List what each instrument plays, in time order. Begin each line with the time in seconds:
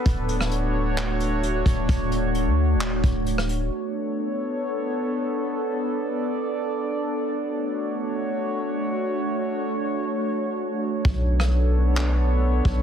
0.06 808-style bass D1, ambient pad A3 D4 F#4 C#5, kick, closed hi-hat
0.29 closed hi-hat
0.41 cross-stick
0.51 closed hi-hat
0.97 clap, closed hi-hat
1.20 closed hi-hat
1.43 closed hi-hat
1.66 808-style bass D1, kick, closed hi-hat
1.89 808-style bass D1, kick, closed hi-hat
2.12 closed hi-hat
2.35 closed hi-hat
2.46 808-style bass D2
2.75 808-style bass D1
2.81 clap
3.04 808-style bass D1, kick, closed hi-hat
3.27 closed hi-hat
3.38 cross-stick
3.49 closed hi-hat
3.72 ambient pad B3 D4 A4 C#5
5.55 ambient pad D5
7.38 ambient pad A3 F#4 C#5
11.05 808-style bass B1, ambient pad B3 D4 A4 C#5, kick
11.40 cross-stick
11.97 clap
12.65 808-style bass B1, kick